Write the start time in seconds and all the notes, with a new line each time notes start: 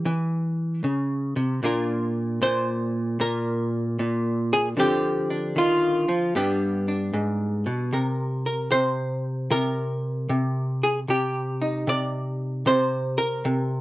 Already playing: G3 G4
0.05 E3
0.84 C#3
1.36 C3
1.63 A#2 A#3 D4 F4 A#4
2.42 A#2 C5
3.20 A#2 A#4
3.99 A#2
4.53 G#4
4.77 D3 F3 C4 D4 G4
5.30 D4
5.56 D#3 F4
6.08 F3
6.35 G2 G3 B3 D4 G4
6.88 D4
7.13 G#2
7.66 B2
7.93 C3 A#4
8.46 A#4
8.72 C3 C5
9.51 C3 A#4
10.29 C3
10.83 G#4
11.08 C3 G4
11.62 D#4
11.87 C3 D5
12.66 C3 C5
13.18 A#4
13.45 C3